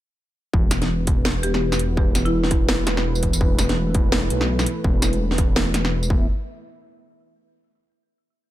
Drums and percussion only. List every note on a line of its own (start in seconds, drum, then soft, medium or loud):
0.53 kick loud
0.71 snare medium
0.71 closed hi-hat medium
0.71 tambourine medium
0.82 snare soft
0.82 closed hi-hat soft
1.07 kick loud
1.07 closed hi-hat medium
1.25 snare loud
1.43 closed hi-hat medium
1.54 snare medium
1.72 snare medium
1.72 tambourine soft
1.79 closed hi-hat medium
1.97 kick loud
2.15 snare medium
2.15 closed hi-hat medium
2.15 tambourine medium
2.26 closed hi-hat soft
2.44 snare soft
2.51 kick loud
2.51 closed hi-hat medium
2.69 snare loud
2.87 snare medium
2.87 closed hi-hat medium
2.97 snare medium
3.15 tambourine soft
3.23 kick medium
3.23 closed hi-hat medium
3.33 tambourine medium
3.41 kick loud
3.59 snare medium
3.59 closed hi-hat medium
3.59 tambourine medium
3.69 snare soft
3.69 closed hi-hat soft
3.94 kick loud
3.94 closed hi-hat medium
4.12 snare loud
4.30 closed hi-hat medium
4.41 snare medium
4.59 snare medium
4.59 tambourine soft
4.66 closed hi-hat medium
4.84 kick loud
5.02 snare medium
5.02 closed hi-hat medium
5.02 tambourine medium
5.13 closed hi-hat soft
5.31 snare soft
5.38 kick loud
5.38 closed hi-hat medium
5.56 snare loud
5.74 snare medium
5.74 closed hi-hat medium
5.85 snare soft
6.03 tambourine soft
6.10 kick loud